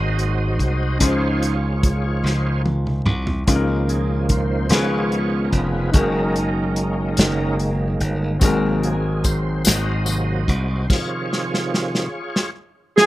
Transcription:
Already playing: G#1 G#2 F#3 G#3 A#3 C4 D#4 F#4 G#4 A#4 C5 D#5
0.19 closed hi-hat
0.59 C2, kick, closed hi-hat
0.99 C#2 C#3 F3 C#4 D#4 F4 G#4 C5, kick, closed hi-hat
1.03 D#3 F4 C5 C#5
1.43 closed hi-hat
1.83 kick, closed hi-hat
2.24 C#2 F3 D#4 C5, snare
2.66 high tom
2.87 mid tom
3.05 C2, mid tom
3.27 floor tom
3.47 C#2 C#3 D#3 F3 A#3 C#4 D#4 F4 G#4, kick, closed hi-hat
3.55 A#4
3.89 G#4, closed hi-hat
4.29 C5, kick, closed hi-hat
4.69 C#2 C#3 D#3 F3 G#3 B3 C#4 F4 G#4 B4 C#5, snare, closed hi-hat
5.12 closed hi-hat
5.45 A#4
5.52 F1 B4, kick, closed hi-hat
5.92 F#1 D#3 F#3 G#3 A#3 D#4 F#4 G#4 A#4, kick, closed hi-hat
5.96 C#4 A#4
6.36 closed hi-hat
6.76 closed hi-hat
7.17 F#1, snare, closed hi-hat
7.59 closed hi-hat
8.00 G1, closed hi-hat
8.40 G#1 G#2 C3 F#3 G#3 A#3 C4 F#4 G#4, kick, closed hi-hat, tambourine
8.45 A#4
8.83 G#4, closed hi-hat
9.24 C5, kick, closed hi-hat, tambourine
9.64 G#1 F#4 C5 D#5, snare, closed hi-hat, tambourine
10.05 C3 F#3 A#3, closed hi-hat, tambourine
10.48 C2, kick, closed hi-hat
10.81 C5
10.88 C3 D#3 F3 F4 G#4 C#5, kick, crash
10.92 snare
11.33 snare
11.54 snare
11.74 snare
11.95 snare
12.36 snare
12.96 D#3 F3 C4 G#4, snare

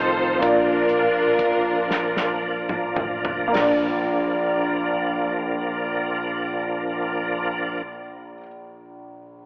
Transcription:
Already playing: A1 D#3 F3 C4 D#4 F4 A4 C5
0.39 A#1 A#2 A#3 D4, kick, closed hi-hat
0.44 A#3 D4 F4 A#4 D5
0.89 closed hi-hat
1.39 kick, closed hi-hat
1.91 snare
2.17 snare
2.69 mid tom
2.96 A1, mid tom
3.25 floor tom
3.48 A#3
3.52 A#1 F3 A#3 D4, snare, open hi-hat
3.57 F4
3.62 D5

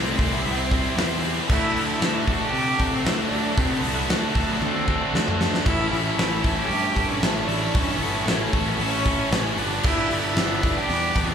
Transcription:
Already playing: C2 C3 E3 G3 A3 C4 E4 G4 C5 E5 C6 D6
0.17 C2 C3 E3 G3 C4 E4 C5, kick, open hi-hat
0.32 B3
0.43 C2 G3 C4 E4 C5, open hi-hat
0.70 G3 C4 E4 C5, kick, open hi-hat
0.95 E2 C3 E3 G3 C4 E4 C5, snare, open hi-hat
1.12 snare
1.21 G3 C4 E4 C5, open hi-hat
1.47 D2 D3 F#3 A3 D4 E4 F#4 A4 F#5 E6, kick, crash
1.74 D2 D4 F#4 A4, open hi-hat
1.89 E4
1.99 D2 D3 F#3 A3 D4 F#4 A4, snare, open hi-hat
2.03 A3 D4
2.27 D3 F#3 A3 D4 F#4 A4, kick, open hi-hat
2.32 F#4
2.41 G4
2.53 C3 A3 D4 F#4 A4, open hi-hat
2.78 C3 F#3 A3 D4 F#4 A4, kick, open hi-hat
2.94 C4
3.04 D2 D3 A3 D4 F#4 A4, snare, open hi-hat
3.20 D4
3.30 D2 F#3 A3 D4 F#4 A4, open hi-hat
3.57 C3 D3 F#3 A3 C4 D4 F#4 A4 C6, kick, open hi-hat
3.71 B3
3.83 C2 D4 F#4 A4, open hi-hat
4.08 D2 D3 F#3 A3 D4 F#4 A4, snare, open hi-hat
4.35 D2 D3 F#3 A3 D4 F#4 A4, kick, open hi-hat
4.48 B3
4.60 D2 A3 C4 D4 F#4 A4, high tom
4.87 F#3 A3 D4 F#4 A4, kick
5.13 D2 D3 A3 D4 F#4 A4, snare
5.28 mid tom
5.40 F#3 A3 D4 F#4 A4, snare
5.54 snare
5.65 A1 A2 E3 A3 C#4 E4 A4 C#5 B5, kick, crash
5.92 A1 A3 C#4 E4 A4, open hi-hat
6.05 E4
6.16 A1 E3 A3 C#4 E4 A4, snare, open hi-hat
6.21 C#4
6.43 A2 E3 A3 C#4 E4 A4, kick, open hi-hat
6.57 G4
6.68 G2 A3 C#4 E4 A4, open hi-hat
6.95 G2 A3 C#4 E4 A4, kick, open hi-hat
7.11 C#4
7.20 A1 A2 E3 A3 C#4 E4 A4, snare, open hi-hat
7.30 C#4
7.37 D4, snare
7.47 A1 A3 C#4 E4 A4, open hi-hat
7.74 G2 A2 E3 A3 C#4 E4 A4 C#6, kick, open hi-hat
7.90 B3
7.99 G1 C#4 E4 A4, open hi-hat
8.03 A3
8.26 A1 E3 A3 C#4 E4 A4, snare, open hi-hat
8.53 A1 A2 E3 A3 C#4 E4 A4, kick, open hi-hat
8.69 B3
8.78 A1 A3 C#4 E4 A4, open hi-hat
8.83 C#4
9.05 A3 C#4 E4 A4, kick, open hi-hat
9.31 A1 A2 E3 A3 C#4 E4 A4, snare, open hi-hat
9.57 G1 G2 D3 G3 B3 D4 G4 D5 B5 D6, open hi-hat
9.83 G1 G2 D3 G3 B3 D4 E4, kick, crash
10.10 G1 G3 B3 D4, open hi-hat
10.22 E4
10.35 G1 D3 G3 B3 D4, snare, open hi-hat
10.62 G2 D3 G3 B3 D4, kick, open hi-hat
10.77 G4
10.89 E2 D3 G3 B3 D4, open hi-hat
11.15 E2 G3 B3 D4, kick, open hi-hat
11.28 C4

